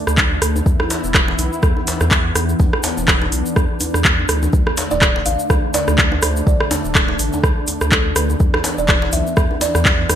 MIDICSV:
0, 0, Header, 1, 6, 480
1, 0, Start_track
1, 0, Tempo, 483871
1, 656, Time_signature, 4, 2, 24, 8
1, 10073, End_track
2, 0, Start_track
2, 0, Title_t, "Kalimba"
2, 0, Program_c, 0, 108
2, 4872, Note_on_c, 0, 74, 105
2, 5191, Note_off_c, 0, 74, 0
2, 5215, Note_on_c, 0, 77, 114
2, 5697, Note_on_c, 0, 74, 105
2, 5709, Note_off_c, 0, 77, 0
2, 6176, Note_on_c, 0, 72, 91
2, 6191, Note_off_c, 0, 74, 0
2, 6399, Note_off_c, 0, 72, 0
2, 6416, Note_on_c, 0, 74, 88
2, 7096, Note_off_c, 0, 74, 0
2, 7855, Note_on_c, 0, 69, 93
2, 8078, Note_off_c, 0, 69, 0
2, 8098, Note_on_c, 0, 71, 104
2, 8714, Note_on_c, 0, 74, 115
2, 8731, Note_off_c, 0, 71, 0
2, 9033, Note_off_c, 0, 74, 0
2, 9055, Note_on_c, 0, 76, 120
2, 9536, Note_on_c, 0, 74, 109
2, 9549, Note_off_c, 0, 76, 0
2, 10018, Note_on_c, 0, 71, 93
2, 10030, Note_off_c, 0, 74, 0
2, 10073, Note_off_c, 0, 71, 0
2, 10073, End_track
3, 0, Start_track
3, 0, Title_t, "Analog synth pad"
3, 0, Program_c, 1, 89
3, 0, Note_on_c, 1, 50, 78
3, 0, Note_on_c, 1, 57, 76
3, 0, Note_on_c, 1, 62, 93
3, 616, Note_off_c, 1, 50, 0
3, 616, Note_off_c, 1, 57, 0
3, 636, Note_off_c, 1, 62, 0
3, 654, Note_on_c, 1, 59, 78
3, 656, Note_on_c, 1, 52, 82
3, 656, Note_on_c, 1, 64, 89
3, 2556, Note_off_c, 1, 64, 0
3, 2575, Note_on_c, 1, 62, 89
3, 4456, Note_off_c, 1, 59, 0
3, 4457, Note_off_c, 1, 52, 0
3, 4476, Note_off_c, 1, 62, 0
3, 4497, Note_on_c, 1, 57, 77
3, 4497, Note_on_c, 1, 62, 89
3, 4498, Note_on_c, 1, 50, 83
3, 8298, Note_off_c, 1, 50, 0
3, 8298, Note_off_c, 1, 57, 0
3, 8332, Note_on_c, 1, 59, 75
3, 8334, Note_on_c, 1, 52, 84
3, 10073, Note_off_c, 1, 52, 0
3, 10073, Note_off_c, 1, 59, 0
3, 10073, Note_off_c, 1, 62, 0
3, 10073, End_track
4, 0, Start_track
4, 0, Title_t, "Analog synth bass"
4, 0, Program_c, 2, 38
4, 71, Note_on_c, 2, 38, 98
4, 379, Note_off_c, 2, 38, 0
4, 414, Note_on_c, 2, 38, 87
4, 610, Note_off_c, 2, 38, 0
4, 654, Note_on_c, 2, 40, 98
4, 761, Note_off_c, 2, 40, 0
4, 1030, Note_on_c, 2, 28, 82
4, 1339, Note_off_c, 2, 28, 0
4, 1375, Note_on_c, 2, 35, 89
4, 1482, Note_off_c, 2, 35, 0
4, 1616, Note_on_c, 2, 40, 81
4, 1722, Note_off_c, 2, 40, 0
4, 1992, Note_on_c, 2, 40, 100
4, 2299, Note_off_c, 2, 40, 0
4, 2334, Note_on_c, 2, 40, 85
4, 2530, Note_off_c, 2, 40, 0
4, 2576, Note_on_c, 2, 40, 104
4, 2682, Note_off_c, 2, 40, 0
4, 2951, Note_on_c, 2, 28, 83
4, 3259, Note_off_c, 2, 28, 0
4, 3295, Note_on_c, 2, 35, 91
4, 3402, Note_off_c, 2, 35, 0
4, 3536, Note_on_c, 2, 40, 84
4, 3642, Note_off_c, 2, 40, 0
4, 3912, Note_on_c, 2, 40, 95
4, 4219, Note_off_c, 2, 40, 0
4, 4254, Note_on_c, 2, 38, 87
4, 4450, Note_off_c, 2, 38, 0
4, 4495, Note_on_c, 2, 38, 100
4, 4602, Note_off_c, 2, 38, 0
4, 4873, Note_on_c, 2, 26, 80
4, 5180, Note_off_c, 2, 26, 0
4, 5217, Note_on_c, 2, 33, 91
4, 5323, Note_off_c, 2, 33, 0
4, 5455, Note_on_c, 2, 38, 82
4, 5562, Note_off_c, 2, 38, 0
4, 5832, Note_on_c, 2, 38, 95
4, 6140, Note_off_c, 2, 38, 0
4, 6175, Note_on_c, 2, 38, 89
4, 6370, Note_off_c, 2, 38, 0
4, 6415, Note_on_c, 2, 38, 96
4, 6522, Note_off_c, 2, 38, 0
4, 6792, Note_on_c, 2, 26, 80
4, 7100, Note_off_c, 2, 26, 0
4, 7136, Note_on_c, 2, 33, 89
4, 7242, Note_off_c, 2, 33, 0
4, 7375, Note_on_c, 2, 38, 84
4, 7482, Note_off_c, 2, 38, 0
4, 7750, Note_on_c, 2, 38, 94
4, 8059, Note_off_c, 2, 38, 0
4, 8094, Note_on_c, 2, 38, 90
4, 8290, Note_off_c, 2, 38, 0
4, 8334, Note_on_c, 2, 40, 98
4, 8441, Note_off_c, 2, 40, 0
4, 8710, Note_on_c, 2, 28, 81
4, 9019, Note_off_c, 2, 28, 0
4, 9055, Note_on_c, 2, 35, 92
4, 9162, Note_off_c, 2, 35, 0
4, 9295, Note_on_c, 2, 40, 83
4, 9402, Note_off_c, 2, 40, 0
4, 9671, Note_on_c, 2, 40, 98
4, 9979, Note_off_c, 2, 40, 0
4, 10015, Note_on_c, 2, 40, 85
4, 10073, Note_off_c, 2, 40, 0
4, 10073, End_track
5, 0, Start_track
5, 0, Title_t, "Djembe"
5, 167, Note_on_c, 9, 63, 87
5, 266, Note_off_c, 9, 63, 0
5, 554, Note_on_c, 9, 63, 65
5, 653, Note_off_c, 9, 63, 0
5, 794, Note_on_c, 9, 63, 85
5, 893, Note_off_c, 9, 63, 0
5, 898, Note_on_c, 9, 62, 105
5, 997, Note_off_c, 9, 62, 0
5, 1134, Note_on_c, 9, 63, 59
5, 1234, Note_off_c, 9, 63, 0
5, 1272, Note_on_c, 9, 62, 77
5, 1371, Note_off_c, 9, 62, 0
5, 1377, Note_on_c, 9, 63, 81
5, 1476, Note_off_c, 9, 63, 0
5, 1752, Note_on_c, 9, 63, 62
5, 1852, Note_off_c, 9, 63, 0
5, 1864, Note_on_c, 9, 62, 105
5, 1963, Note_off_c, 9, 62, 0
5, 1991, Note_on_c, 9, 63, 84
5, 2090, Note_off_c, 9, 63, 0
5, 2337, Note_on_c, 9, 63, 65
5, 2436, Note_off_c, 9, 63, 0
5, 2577, Note_on_c, 9, 63, 95
5, 2676, Note_off_c, 9, 63, 0
5, 2814, Note_on_c, 9, 62, 107
5, 2913, Note_off_c, 9, 62, 0
5, 2948, Note_on_c, 9, 63, 69
5, 3047, Note_off_c, 9, 63, 0
5, 3190, Note_on_c, 9, 62, 81
5, 3192, Note_on_c, 9, 63, 85
5, 3289, Note_off_c, 9, 62, 0
5, 3292, Note_off_c, 9, 63, 0
5, 3540, Note_on_c, 9, 63, 65
5, 3640, Note_off_c, 9, 63, 0
5, 3776, Note_on_c, 9, 63, 88
5, 3875, Note_off_c, 9, 63, 0
5, 4159, Note_on_c, 9, 63, 60
5, 4258, Note_off_c, 9, 63, 0
5, 4392, Note_on_c, 9, 63, 92
5, 4491, Note_off_c, 9, 63, 0
5, 4628, Note_on_c, 9, 63, 68
5, 4727, Note_off_c, 9, 63, 0
5, 4739, Note_on_c, 9, 62, 103
5, 4838, Note_off_c, 9, 62, 0
5, 4874, Note_on_c, 9, 63, 96
5, 4973, Note_off_c, 9, 63, 0
5, 5118, Note_on_c, 9, 62, 76
5, 5217, Note_off_c, 9, 62, 0
5, 5225, Note_on_c, 9, 63, 73
5, 5324, Note_off_c, 9, 63, 0
5, 5457, Note_on_c, 9, 63, 96
5, 5557, Note_off_c, 9, 63, 0
5, 5696, Note_on_c, 9, 62, 115
5, 5795, Note_off_c, 9, 62, 0
5, 5836, Note_on_c, 9, 63, 65
5, 5935, Note_off_c, 9, 63, 0
5, 6068, Note_on_c, 9, 63, 95
5, 6167, Note_off_c, 9, 63, 0
5, 6417, Note_on_c, 9, 63, 77
5, 6516, Note_off_c, 9, 63, 0
5, 6655, Note_on_c, 9, 62, 107
5, 6658, Note_on_c, 9, 63, 103
5, 6754, Note_off_c, 9, 62, 0
5, 6757, Note_off_c, 9, 63, 0
5, 7027, Note_on_c, 9, 62, 82
5, 7030, Note_on_c, 9, 63, 64
5, 7126, Note_off_c, 9, 62, 0
5, 7129, Note_off_c, 9, 63, 0
5, 7279, Note_on_c, 9, 63, 97
5, 7378, Note_off_c, 9, 63, 0
5, 7619, Note_on_c, 9, 63, 70
5, 7718, Note_off_c, 9, 63, 0
5, 7860, Note_on_c, 9, 63, 105
5, 7960, Note_off_c, 9, 63, 0
5, 8232, Note_on_c, 9, 63, 65
5, 8331, Note_off_c, 9, 63, 0
5, 8475, Note_on_c, 9, 63, 100
5, 8570, Note_on_c, 9, 62, 117
5, 8574, Note_off_c, 9, 63, 0
5, 8669, Note_off_c, 9, 62, 0
5, 8810, Note_on_c, 9, 63, 76
5, 8909, Note_off_c, 9, 63, 0
5, 8949, Note_on_c, 9, 62, 85
5, 9049, Note_off_c, 9, 62, 0
5, 9060, Note_on_c, 9, 63, 89
5, 9159, Note_off_c, 9, 63, 0
5, 9432, Note_on_c, 9, 63, 69
5, 9531, Note_off_c, 9, 63, 0
5, 9534, Note_on_c, 9, 62, 110
5, 9634, Note_off_c, 9, 62, 0
5, 9670, Note_on_c, 9, 63, 92
5, 9769, Note_off_c, 9, 63, 0
5, 10017, Note_on_c, 9, 63, 64
5, 10073, Note_off_c, 9, 63, 0
5, 10073, End_track
6, 0, Start_track
6, 0, Title_t, "Drums"
6, 71, Note_on_c, 9, 37, 81
6, 79, Note_on_c, 9, 82, 51
6, 170, Note_off_c, 9, 37, 0
6, 173, Note_off_c, 9, 82, 0
6, 173, Note_on_c, 9, 82, 40
6, 175, Note_on_c, 9, 36, 115
6, 175, Note_on_c, 9, 39, 99
6, 273, Note_off_c, 9, 82, 0
6, 274, Note_off_c, 9, 36, 0
6, 275, Note_off_c, 9, 39, 0
6, 415, Note_on_c, 9, 37, 93
6, 415, Note_on_c, 9, 46, 86
6, 420, Note_on_c, 9, 82, 96
6, 514, Note_off_c, 9, 37, 0
6, 514, Note_off_c, 9, 46, 0
6, 519, Note_off_c, 9, 82, 0
6, 556, Note_on_c, 9, 82, 48
6, 655, Note_off_c, 9, 82, 0
6, 655, Note_on_c, 9, 36, 118
6, 660, Note_on_c, 9, 82, 39
6, 755, Note_off_c, 9, 36, 0
6, 759, Note_off_c, 9, 82, 0
6, 791, Note_on_c, 9, 37, 88
6, 891, Note_off_c, 9, 37, 0
6, 895, Note_on_c, 9, 46, 90
6, 897, Note_on_c, 9, 82, 89
6, 994, Note_off_c, 9, 46, 0
6, 996, Note_off_c, 9, 82, 0
6, 1031, Note_on_c, 9, 82, 47
6, 1130, Note_off_c, 9, 82, 0
6, 1135, Note_on_c, 9, 36, 117
6, 1136, Note_on_c, 9, 37, 74
6, 1136, Note_on_c, 9, 39, 107
6, 1136, Note_on_c, 9, 82, 39
6, 1235, Note_off_c, 9, 36, 0
6, 1235, Note_off_c, 9, 37, 0
6, 1235, Note_off_c, 9, 39, 0
6, 1235, Note_off_c, 9, 82, 0
6, 1374, Note_on_c, 9, 82, 80
6, 1376, Note_on_c, 9, 46, 86
6, 1473, Note_off_c, 9, 82, 0
6, 1475, Note_off_c, 9, 46, 0
6, 1515, Note_on_c, 9, 82, 55
6, 1614, Note_off_c, 9, 82, 0
6, 1614, Note_on_c, 9, 82, 40
6, 1615, Note_on_c, 9, 36, 115
6, 1616, Note_on_c, 9, 37, 92
6, 1713, Note_off_c, 9, 82, 0
6, 1715, Note_off_c, 9, 36, 0
6, 1715, Note_off_c, 9, 37, 0
6, 1856, Note_on_c, 9, 46, 89
6, 1859, Note_on_c, 9, 82, 89
6, 1955, Note_off_c, 9, 46, 0
6, 1959, Note_off_c, 9, 82, 0
6, 1988, Note_on_c, 9, 82, 52
6, 1992, Note_on_c, 9, 37, 78
6, 2087, Note_off_c, 9, 82, 0
6, 2091, Note_off_c, 9, 37, 0
6, 2093, Note_on_c, 9, 82, 34
6, 2095, Note_on_c, 9, 36, 115
6, 2096, Note_on_c, 9, 39, 102
6, 2192, Note_off_c, 9, 82, 0
6, 2195, Note_off_c, 9, 36, 0
6, 2195, Note_off_c, 9, 39, 0
6, 2336, Note_on_c, 9, 37, 93
6, 2336, Note_on_c, 9, 46, 92
6, 2339, Note_on_c, 9, 82, 85
6, 2435, Note_off_c, 9, 37, 0
6, 2435, Note_off_c, 9, 46, 0
6, 2438, Note_off_c, 9, 82, 0
6, 2470, Note_on_c, 9, 82, 50
6, 2569, Note_off_c, 9, 82, 0
6, 2575, Note_on_c, 9, 82, 37
6, 2576, Note_on_c, 9, 36, 119
6, 2674, Note_off_c, 9, 82, 0
6, 2675, Note_off_c, 9, 36, 0
6, 2711, Note_on_c, 9, 37, 91
6, 2809, Note_on_c, 9, 82, 95
6, 2810, Note_off_c, 9, 37, 0
6, 2815, Note_on_c, 9, 46, 88
6, 2908, Note_off_c, 9, 82, 0
6, 2914, Note_off_c, 9, 46, 0
6, 2952, Note_on_c, 9, 82, 53
6, 3051, Note_off_c, 9, 82, 0
6, 3053, Note_on_c, 9, 82, 37
6, 3055, Note_on_c, 9, 36, 113
6, 3055, Note_on_c, 9, 37, 79
6, 3055, Note_on_c, 9, 39, 107
6, 3153, Note_off_c, 9, 82, 0
6, 3154, Note_off_c, 9, 37, 0
6, 3154, Note_off_c, 9, 39, 0
6, 3155, Note_off_c, 9, 36, 0
6, 3295, Note_on_c, 9, 46, 92
6, 3299, Note_on_c, 9, 82, 94
6, 3394, Note_off_c, 9, 46, 0
6, 3398, Note_off_c, 9, 82, 0
6, 3430, Note_on_c, 9, 82, 50
6, 3529, Note_off_c, 9, 82, 0
6, 3534, Note_on_c, 9, 37, 88
6, 3535, Note_on_c, 9, 36, 115
6, 3538, Note_on_c, 9, 82, 37
6, 3633, Note_off_c, 9, 37, 0
6, 3635, Note_off_c, 9, 36, 0
6, 3638, Note_off_c, 9, 82, 0
6, 3771, Note_on_c, 9, 82, 81
6, 3775, Note_on_c, 9, 46, 91
6, 3870, Note_off_c, 9, 82, 0
6, 3874, Note_off_c, 9, 46, 0
6, 3911, Note_on_c, 9, 37, 82
6, 3918, Note_on_c, 9, 82, 51
6, 4010, Note_off_c, 9, 37, 0
6, 4013, Note_off_c, 9, 82, 0
6, 4013, Note_on_c, 9, 82, 42
6, 4014, Note_on_c, 9, 39, 110
6, 4015, Note_on_c, 9, 36, 114
6, 4112, Note_off_c, 9, 82, 0
6, 4113, Note_off_c, 9, 39, 0
6, 4114, Note_off_c, 9, 36, 0
6, 4252, Note_on_c, 9, 82, 93
6, 4255, Note_on_c, 9, 37, 95
6, 4255, Note_on_c, 9, 46, 96
6, 4351, Note_off_c, 9, 82, 0
6, 4354, Note_off_c, 9, 37, 0
6, 4354, Note_off_c, 9, 46, 0
6, 4391, Note_on_c, 9, 82, 52
6, 4490, Note_off_c, 9, 82, 0
6, 4495, Note_on_c, 9, 36, 126
6, 4497, Note_on_c, 9, 82, 42
6, 4595, Note_off_c, 9, 36, 0
6, 4596, Note_off_c, 9, 82, 0
6, 4630, Note_on_c, 9, 37, 89
6, 4730, Note_off_c, 9, 37, 0
6, 4733, Note_on_c, 9, 82, 87
6, 4735, Note_on_c, 9, 46, 93
6, 4833, Note_off_c, 9, 82, 0
6, 4834, Note_off_c, 9, 46, 0
6, 4869, Note_on_c, 9, 82, 55
6, 4968, Note_off_c, 9, 82, 0
6, 4975, Note_on_c, 9, 36, 125
6, 4975, Note_on_c, 9, 37, 78
6, 4975, Note_on_c, 9, 39, 111
6, 4980, Note_on_c, 9, 82, 36
6, 5074, Note_off_c, 9, 37, 0
6, 5074, Note_off_c, 9, 39, 0
6, 5075, Note_off_c, 9, 36, 0
6, 5079, Note_off_c, 9, 82, 0
6, 5215, Note_on_c, 9, 46, 95
6, 5216, Note_on_c, 9, 82, 91
6, 5314, Note_off_c, 9, 46, 0
6, 5315, Note_off_c, 9, 82, 0
6, 5349, Note_on_c, 9, 82, 54
6, 5448, Note_off_c, 9, 82, 0
6, 5455, Note_on_c, 9, 82, 45
6, 5456, Note_on_c, 9, 36, 115
6, 5456, Note_on_c, 9, 37, 93
6, 5555, Note_off_c, 9, 36, 0
6, 5555, Note_off_c, 9, 37, 0
6, 5555, Note_off_c, 9, 82, 0
6, 5694, Note_on_c, 9, 82, 101
6, 5695, Note_on_c, 9, 46, 98
6, 5793, Note_off_c, 9, 82, 0
6, 5794, Note_off_c, 9, 46, 0
6, 5831, Note_on_c, 9, 37, 83
6, 5831, Note_on_c, 9, 82, 55
6, 5930, Note_off_c, 9, 37, 0
6, 5930, Note_off_c, 9, 82, 0
6, 5934, Note_on_c, 9, 39, 102
6, 5936, Note_on_c, 9, 36, 119
6, 5940, Note_on_c, 9, 82, 40
6, 6034, Note_off_c, 9, 39, 0
6, 6035, Note_off_c, 9, 36, 0
6, 6039, Note_off_c, 9, 82, 0
6, 6172, Note_on_c, 9, 82, 97
6, 6176, Note_on_c, 9, 37, 97
6, 6176, Note_on_c, 9, 46, 97
6, 6271, Note_off_c, 9, 82, 0
6, 6275, Note_off_c, 9, 37, 0
6, 6275, Note_off_c, 9, 46, 0
6, 6314, Note_on_c, 9, 82, 54
6, 6413, Note_off_c, 9, 82, 0
6, 6416, Note_on_c, 9, 36, 127
6, 6424, Note_on_c, 9, 82, 46
6, 6515, Note_off_c, 9, 36, 0
6, 6524, Note_off_c, 9, 82, 0
6, 6552, Note_on_c, 9, 37, 96
6, 6651, Note_off_c, 9, 37, 0
6, 6656, Note_on_c, 9, 46, 97
6, 6660, Note_on_c, 9, 82, 99
6, 6755, Note_off_c, 9, 46, 0
6, 6760, Note_off_c, 9, 82, 0
6, 6792, Note_on_c, 9, 82, 54
6, 6891, Note_off_c, 9, 82, 0
6, 6895, Note_on_c, 9, 37, 83
6, 6895, Note_on_c, 9, 39, 107
6, 6896, Note_on_c, 9, 36, 124
6, 6897, Note_on_c, 9, 82, 42
6, 6995, Note_off_c, 9, 36, 0
6, 6995, Note_off_c, 9, 37, 0
6, 6995, Note_off_c, 9, 39, 0
6, 6996, Note_off_c, 9, 82, 0
6, 7134, Note_on_c, 9, 82, 91
6, 7135, Note_on_c, 9, 46, 93
6, 7233, Note_off_c, 9, 82, 0
6, 7234, Note_off_c, 9, 46, 0
6, 7269, Note_on_c, 9, 82, 60
6, 7368, Note_off_c, 9, 82, 0
6, 7375, Note_on_c, 9, 36, 120
6, 7376, Note_on_c, 9, 37, 96
6, 7382, Note_on_c, 9, 82, 43
6, 7474, Note_off_c, 9, 36, 0
6, 7475, Note_off_c, 9, 37, 0
6, 7481, Note_off_c, 9, 82, 0
6, 7610, Note_on_c, 9, 82, 101
6, 7615, Note_on_c, 9, 46, 94
6, 7709, Note_off_c, 9, 82, 0
6, 7714, Note_off_c, 9, 46, 0
6, 7746, Note_on_c, 9, 82, 55
6, 7751, Note_on_c, 9, 37, 83
6, 7845, Note_off_c, 9, 82, 0
6, 7850, Note_off_c, 9, 37, 0
6, 7851, Note_on_c, 9, 82, 43
6, 7854, Note_on_c, 9, 39, 104
6, 7855, Note_on_c, 9, 36, 121
6, 7950, Note_off_c, 9, 82, 0
6, 7954, Note_off_c, 9, 36, 0
6, 7954, Note_off_c, 9, 39, 0
6, 8094, Note_on_c, 9, 37, 102
6, 8094, Note_on_c, 9, 46, 99
6, 8094, Note_on_c, 9, 82, 101
6, 8193, Note_off_c, 9, 37, 0
6, 8193, Note_off_c, 9, 46, 0
6, 8193, Note_off_c, 9, 82, 0
6, 8230, Note_on_c, 9, 82, 60
6, 8329, Note_off_c, 9, 82, 0
6, 8331, Note_on_c, 9, 82, 45
6, 8334, Note_on_c, 9, 36, 124
6, 8431, Note_off_c, 9, 82, 0
6, 8434, Note_off_c, 9, 36, 0
6, 8470, Note_on_c, 9, 37, 101
6, 8570, Note_off_c, 9, 37, 0
6, 8574, Note_on_c, 9, 46, 97
6, 8577, Note_on_c, 9, 82, 94
6, 8673, Note_off_c, 9, 46, 0
6, 8676, Note_off_c, 9, 82, 0
6, 8711, Note_on_c, 9, 82, 54
6, 8807, Note_off_c, 9, 82, 0
6, 8807, Note_on_c, 9, 82, 37
6, 8814, Note_on_c, 9, 37, 83
6, 8814, Note_on_c, 9, 39, 100
6, 8815, Note_on_c, 9, 36, 127
6, 8906, Note_off_c, 9, 82, 0
6, 8914, Note_off_c, 9, 36, 0
6, 8914, Note_off_c, 9, 37, 0
6, 8914, Note_off_c, 9, 39, 0
6, 9049, Note_on_c, 9, 82, 94
6, 9054, Note_on_c, 9, 46, 90
6, 9148, Note_off_c, 9, 82, 0
6, 9153, Note_off_c, 9, 46, 0
6, 9194, Note_on_c, 9, 82, 53
6, 9293, Note_off_c, 9, 82, 0
6, 9294, Note_on_c, 9, 37, 98
6, 9294, Note_on_c, 9, 82, 39
6, 9295, Note_on_c, 9, 36, 124
6, 9393, Note_off_c, 9, 37, 0
6, 9393, Note_off_c, 9, 82, 0
6, 9394, Note_off_c, 9, 36, 0
6, 9535, Note_on_c, 9, 46, 94
6, 9537, Note_on_c, 9, 82, 100
6, 9634, Note_off_c, 9, 46, 0
6, 9636, Note_off_c, 9, 82, 0
6, 9671, Note_on_c, 9, 37, 88
6, 9673, Note_on_c, 9, 82, 59
6, 9770, Note_off_c, 9, 37, 0
6, 9772, Note_off_c, 9, 82, 0
6, 9774, Note_on_c, 9, 39, 102
6, 9775, Note_on_c, 9, 36, 124
6, 9775, Note_on_c, 9, 82, 45
6, 9873, Note_off_c, 9, 39, 0
6, 9874, Note_off_c, 9, 36, 0
6, 9874, Note_off_c, 9, 82, 0
6, 10014, Note_on_c, 9, 37, 97
6, 10014, Note_on_c, 9, 46, 95
6, 10017, Note_on_c, 9, 82, 96
6, 10073, Note_off_c, 9, 37, 0
6, 10073, Note_off_c, 9, 46, 0
6, 10073, Note_off_c, 9, 82, 0
6, 10073, End_track
0, 0, End_of_file